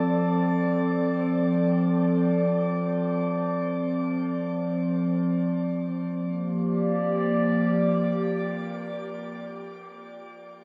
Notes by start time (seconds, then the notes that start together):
Already playing: F3 C4 A4 D5
5.90 F3
6.08 A#3
6.22 G4
6.38 D5